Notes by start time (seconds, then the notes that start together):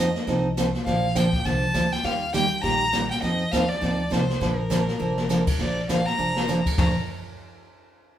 Already playing: F2 D#5
0.15 snare
0.27 C2 F3 C4 D#4 A4, brush sweep, kick, snare
0.57 F3 C4 D#4 A4, kick, snare, hi-hat pedal
0.74 snare
0.86 A#1 D3 F3 A#3 D4 A4 F5, brush sweep, kick, snare
1.15 D3 F3 A#3 D4 A4 G5, kick, snare, hi-hat pedal
1.33 kick, snare
1.45 C2 D3 F3 A#3 D4 A4 A5, brush sweep, kick, snare
1.74 D2 D3 F3 A#3 D4 A4, kick, snare, hi-hat pedal
1.92 G5, snare
2.03 D#2 D#3 G3 A#3 F4 G4 F5, brush sweep, kick, snare
2.33 D#3 G3 A#3 F4 G4 G5, kick, snare, hi-hat pedal
2.63 A#1 D#3 G3 A#3 F4 G4 A#5, brush sweep, kick, snare
2.93 D#3 G3 A#3 F4 G4, kick, snare, hi-hat pedal
3.11 G5, snare
3.22 F2 F3 C4 D#4 A4 D#5, brush sweep, kick, snare
3.52 D#2 F3 C4 D#4 A4 F5, kick, snare, hi-hat pedal
3.69 D5, snare
3.81 D2 F3 C4 D#4 A4, brush sweep, kick, snare
4.10 C2 F3 C4 D#4 A4 C5, kick, snare, hi-hat pedal
4.30 snare
4.41 A#1 D3 F3 A#3 D4 A4 A#4, brush sweep, kick, snare
4.70 D3 F3 A#3 D4 A4, kick, snare, hi-hat pedal
4.88 snare
4.99 F1 D3 F3 A#3 D4 A4
5.17 snare
5.29 D3 F3 A#3 D4 A4, snare, hi-hat pedal
5.47 kick, crash
5.59 A#1 D3 F3 A#3 D4 A4 D5, brush sweep, kick, snare
5.89 D3 F3 A#3 D4 A4 F5, kick, snare, hi-hat pedal
6.07 A#5, snare
6.18 F1 D3 F3 A#3 D4 A4
6.36 snare
6.48 D3 F3 A#3 D4 A4, snare, hi-hat pedal
6.66 kick, crash
6.77 A#1 A#2 D3 F3 A#3 D4 A4 A#5, kick, floor tom, open hi-hat